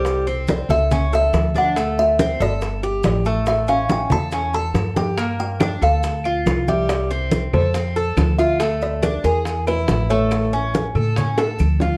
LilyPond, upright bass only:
\new Staff \with { instrumentName = "Upright bass" } { \clef bass \time 4/4 \key d \minor \tempo 4 = 140 c,4. cis,4. d,4~ | d,4. g,,4. a,,4~ | a,,4. e,4. g,4~ | g,4. d,4. c,4~ |
c,4. f,4. d,4~ | d,4. e,4. a,,4~ | a,,4. a,4. d,4 | }